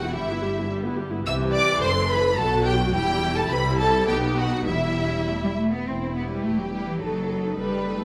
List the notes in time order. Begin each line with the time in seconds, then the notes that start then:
Already playing: E1 E2 F#4 F#5
0.01 B3 E4
0.15 G1 G2 G3 E4 G4 E5
0.29 B3 E4
0.42 G3 G4
0.56 B3 E4
0.70 G3 G4
0.83 B3 E4
0.98 G3 G4
1.11 B3 E4
1.25 C2 C3 E3 G4 E5 E6
1.54 D5 D6
1.81 F#1 F#2 A4 C5 C6
2.10 B4 B5
2.37 B1 B2 F#3 F#4 A4 A5
2.65 G4 G5
2.93 E1 E2 G3 E4 G4 G5
3.36 A4 A5
3.49 C2 C3 G3 E4 B4 B5
3.79 A4 A5
4.08 B1 B2 B3 D#4 G4 G5
4.36 F#4 F#5
4.66 E1 E2 G3 E4 E5
5.28 A3
5.44 G3
5.57 A3
5.73 B3
5.87 E1 C4 E4
6.15 B3 E4 G4 B4
6.31 G3
6.44 E1 A3 G4
6.58 F#3
6.72 G3 E4 G4 B4
6.87 E3
7.01 F#1 F#3 D#4 A4 B4
7.30 D#4 A4 B4
7.57 F#1 G3 B4
7.86 D#4 A4 B4
8.00 A3